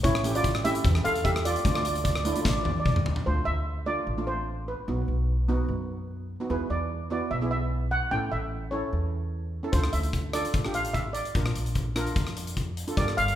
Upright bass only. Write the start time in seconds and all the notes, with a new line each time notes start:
0.04 A1
0.85 E2
1.05 E2
1.65 D2
2.45 A1
2.66 F2
2.86 E2
3.06 D2
3.27 D2
3.46 D2
4.07 A1
4.88 B1
5.08 B1
5.68 F#2
6.50 E2
6.70 E2
7.31 B1
8.11 A1
8.32 A1
8.93 E2
9.73 D2
9.93 D2
10.54 A1
11.35 A#1
11.55 A#1
12.16 F2
12.97 G1
13.18 G1